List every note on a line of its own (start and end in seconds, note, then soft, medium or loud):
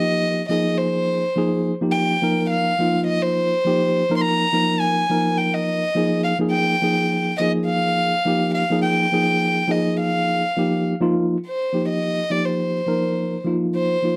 0.00 0.40 F3 medium
0.00 0.40 A#3 medium
0.00 0.41 D#4 medium
0.00 0.41 G4 medium
0.00 0.45 D#5 loud
0.49 1.23 F3 medium
0.49 1.23 A#3 medium
0.49 1.23 D#4 medium
0.49 1.23 G#4 medium
0.49 0.79 D#5 medium
0.78 1.64 C5 medium
1.36 1.72 F3 medium
1.36 1.73 A#3 medium
1.36 1.73 D#4 medium
1.36 1.73 G#4 medium
1.81 2.16 F3 medium
1.81 2.16 A#3 medium
1.81 2.16 D#4 medium
1.81 2.17 G4 medium
1.91 2.46 G5 medium
2.22 2.71 F3 medium
2.22 2.71 A#3 medium
2.22 2.71 D#4 medium
2.22 2.72 A#4 medium
2.50 3.04 F5 medium
2.79 3.53 F3 medium
2.79 3.53 A#3 medium
2.79 3.53 D#4 medium
2.79 3.54 F4 medium
3.07 3.23 D#5 medium
3.22 4.16 C5 medium
3.65 4.02 F3 medium
3.65 4.03 A#3 medium
3.65 4.03 D#4 medium
3.65 4.03 G4 medium
4.09 4.45 F3 medium
4.09 4.46 A#3 medium
4.09 4.46 D#4 medium
4.09 4.46 A#4 medium
4.17 4.23 C6 medium
4.22 4.81 A#5 loud
4.53 5.01 F3 medium
4.53 5.01 A#3 medium
4.53 5.02 D#4 medium
4.53 5.02 A#4 medium
4.79 5.39 G#5 medium
5.09 5.83 F3 medium
5.09 5.83 A#3 medium
5.09 5.84 D#4 medium
5.09 5.84 A#4 medium
5.37 5.55 G5 medium
5.54 6.23 D#5 medium
5.95 6.32 F3 medium
5.95 6.33 A#3 medium
5.95 6.33 D#4 medium
5.95 6.33 G#4 medium
6.24 6.37 F5 medium
6.39 6.75 F3 medium
6.39 6.75 A#3 medium
6.39 6.75 D#4 medium
6.39 6.76 G#4 medium
6.51 7.35 G5 loud
6.82 7.31 F3 medium
6.82 7.31 A#3 medium
6.82 7.32 D#4 medium
6.82 7.32 G#4 medium
7.38 8.13 F3 medium
7.38 8.14 A#3 medium
7.38 8.14 D#4 medium
7.38 8.14 G#4 medium
7.38 7.51 D#5 medium
7.66 8.50 F5 loud
8.25 8.62 F3 medium
8.25 8.63 A#3 medium
8.25 8.63 D#4 medium
8.25 8.63 G4 medium
8.55 8.82 F5 medium
8.70 9.06 F3 medium
8.70 9.06 A#3 medium
8.70 9.06 D#4 medium
8.70 9.07 G#4 medium
8.82 9.73 G5 medium
9.12 9.61 F3 medium
9.12 9.62 A#3 medium
9.12 9.62 D#4 medium
9.12 9.62 G#4 medium
9.68 10.43 F3 medium
9.68 10.43 A#3 medium
9.68 10.43 D#4 medium
9.68 10.44 G#4 medium
9.68 9.99 D#5 medium
10.00 10.82 F5 medium
10.56 10.93 F3 medium
10.56 10.94 A#3 medium
10.56 10.94 D#4 medium
10.56 10.94 G4 medium
11.00 11.36 F3 medium
11.00 11.36 A#3 medium
11.00 11.37 D#4 medium
11.00 11.37 F4 loud
11.47 11.87 C5 medium
11.73 12.21 F3 medium
11.73 12.22 A#3 medium
11.73 12.22 D#4 medium
11.73 12.22 G4 medium
11.89 12.32 D#5 medium
12.30 12.79 F3 medium
12.30 12.79 A#3 medium
12.30 12.79 D#4 medium
12.30 12.80 G4 medium
12.30 12.46 D5 medium
12.45 13.45 C5 medium
12.86 13.36 F3 medium
12.86 13.36 A#3 medium
12.86 13.37 D#4 medium
12.86 13.37 A#4 medium
13.45 13.94 F3 medium
13.45 13.95 A#3 medium
13.45 13.95 D#4 medium
13.45 13.95 F4 medium
13.75 14.16 C5 medium
14.02 14.16 F3 medium
14.02 14.16 A#3 soft
14.02 14.16 D#4 soft
14.02 14.16 F4 medium